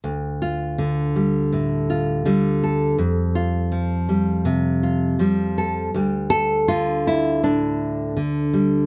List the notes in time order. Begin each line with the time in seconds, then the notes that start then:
0.04 D2
0.42 F4
0.78 D3
1.16 G3
1.53 A2
1.90 F4
2.25 D3 G3
2.63 A4
2.98 F2
3.35 F4
3.72 F3
4.09 G3
4.45 C3
4.83 F4
5.19 F3 G3
5.58 A4
5.94 D2 G3
6.30 A4
6.68 D3 F4
7.07 E4
7.43 A2 D4
8.17 D3
8.53 G3